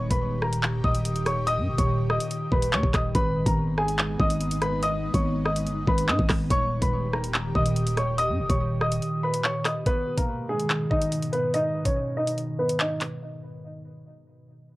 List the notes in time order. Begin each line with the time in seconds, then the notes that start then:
Already playing: A#2 D#3 G4
0.11 D#1 B4 B5, kick, closed hi-hat
0.42 A#4 A#5, cross-stick
0.53 closed hi-hat
0.63 clap
0.84 D#1 D#5 D#6, kick
0.95 closed hi-hat
1.05 closed hi-hat
1.16 closed hi-hat
1.26 C#5 C#6, cross-stick, closed hi-hat
1.47 D#5 D#6, closed hi-hat
1.57 G2
1.68 D#1
1.78 D#1 C#5 C#6, kick, closed hi-hat
2.10 D#5 D#6, cross-stick
2.20 closed hi-hat
2.31 closed hi-hat
2.52 D#1 B4 B5, kick
2.62 closed hi-hat
2.73 D#2 C#5 C#6, clap
2.83 D#1, kick
2.94 D#1 D#5 D#6, kick, cross-stick, clap, closed hi-hat
3.15 G#1 G#3 B3 D#4 B4 B5, kick, closed hi-hat
3.46 G#1 A#4 A#5, kick, closed hi-hat
3.78 G#4 G#5, cross-stick
3.88 closed hi-hat
3.99 clap
4.20 G#1 D#5 D#6, kick
4.30 closed hi-hat
4.41 closed hi-hat
4.51 closed hi-hat
4.62 B4 B5, cross-stick, closed hi-hat
4.83 D#5 D#6, closed hi-hat
5.14 G#1 C#5 C#6, kick, closed hi-hat
5.45 D#5 D#6, cross-stick
5.56 closed hi-hat
5.66 G1, closed hi-hat
5.87 G#1 B4 B5, kick
5.98 closed hi-hat
6.08 G#2 D#5 D#6, clap
6.19 G#1, kick
6.29 G#1, kick, cross-stick, clap, open hi-hat
6.50 D#1 A#2 D#3 G4 C#5 C#6, kick, closed hi-hat
6.82 D#1 B4 B5, kick, closed hi-hat
7.13 A#4 A#5, cross-stick
7.24 closed hi-hat
7.34 clap
7.55 D#1 D#5 D#6, kick
7.66 closed hi-hat
7.76 closed hi-hat
7.87 closed hi-hat
7.97 C#5 C#6, cross-stick, closed hi-hat
8.18 D#5 D#6, closed hi-hat
8.29 G2
8.39 D#1
8.50 D#1 C#5 C#6, kick, closed hi-hat
8.81 D#5 D#6, cross-stick
8.92 closed hi-hat
9.02 closed hi-hat
9.23 B4 B5
9.34 closed hi-hat
9.44 C#5 C#6, clap
9.65 D#5 D#6, cross-stick, clap, closed hi-hat
9.86 G#2 B2 D#3 B3 B4, kick, closed hi-hat
10.18 A#3 A#4, kick, closed hi-hat
10.49 G#3 G#4
10.60 closed hi-hat
10.70 clap
10.91 D#4 D#5, kick
11.02 closed hi-hat
11.12 closed hi-hat
11.23 closed hi-hat
11.33 B3 B4, closed hi-hat
11.54 D#4 D#5, closed hi-hat
11.85 C#4 C#5, kick, closed hi-hat
12.17 D#4 D#5
12.27 closed hi-hat
12.38 closed hi-hat
12.59 B3 B4
12.69 closed hi-hat
12.80 D#4 D#5, clap
13.01 clap, closed hi-hat